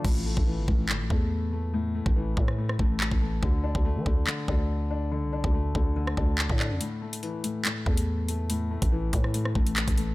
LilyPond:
<<
  \new Staff \with { instrumentName = "Grand piano" } { \clef bass \time 4/4 \key a \minor \tempo 4 = 142 a,8 a8 e8 a,8 a,8 a4 a8 | a,8 a8 e8 a,8 a,8 a4 a8 | d8 d'8 a8 d8 d8 d'4 d'8 | d8 d'8 a8 d8 d8 d'4 d'8 |
a,8 a8 e8 a,8 a,8 a4 a8 | a,8 a8 e8 a,8 a,8 a4 a8 | }
  \new Staff \with { instrumentName = "808-style bass" } { \clef bass \time 4/4 \key a \minor a,,8. a,,8 g,,16 a,,8 g,,16 a,,16 e,4.~ | e,8. a,,8. a,4 a,,8. a,,8. | d,8. d,8 f16 d,8 r8 d,4.~ | d,16 c,8 d,8. d,4 d,8. a,8 f,16 |
r2 r8 e,4.~ | e,8. a,,8. a,4 a,,8. a,,8. | }
  \new DrumStaff \with { instrumentName = "Drums" } \drummode { \time 4/4 <cymc bd>8. bd16 r8 bd8 hc8 bd8 r4 | r8. bd16 r8 bd16 ss16 r16 ss16 bd8 hc16 bd8. | bd8. bd16 r8 bd8 hc8 bd8 r4 | r8. bd16 r8 bd8 r16 ss16 bd8 hc16 bd16 hc8 |
hh8. hh16 hh8 hh8 <hc hh>8 bd16 hh16 r8 hh8 | hh8. <hh bd>16 r8 <hh bd>16 ss16 hh16 ss16 bd16 hh16 <hc hh>16 <hh bd>16 hh8 | }
>>